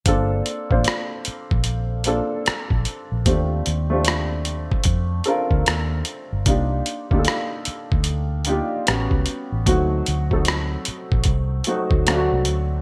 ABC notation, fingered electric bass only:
X:1
M:4/4
L:1/16
Q:"Swing 16ths" 1/4=75
K:Gm
V:1 name="Fingered electric bass" clef=bass
G,,,2 z A,,, z3 B,,,4 z2 B,,, z B,,, | E,,2 E,,4- E,, z F,,2 z D,, E,,2 z G,,, | C,,2 z D,, z3 D,,4 z A,,, ^C,, z A,,, | D,,2 D,,4 z B,,, C,,2 z D,, D,, C,, D,,2 |]